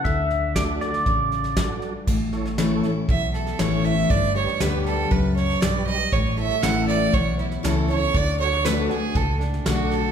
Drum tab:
CC |----------------|x---------------|----------------|----------------|
HH |----p-------p---|----p-------p---|----p-------p---|----p-------p---|
SD |o-o-o-ooo-ooo-o-|o-ooo-o-o-ooo-o-|o-ooo-o-o-ooo-o-|o-ooo-o-o-ooo-o-|
BD |o---o---o---o---|o-------o-------|o-------o-------|o-------o-------|

CC |----------------|
HH |----p-------p---|
SD |o-ooo-o-o-ooo-o-|
BD |o-------o-------|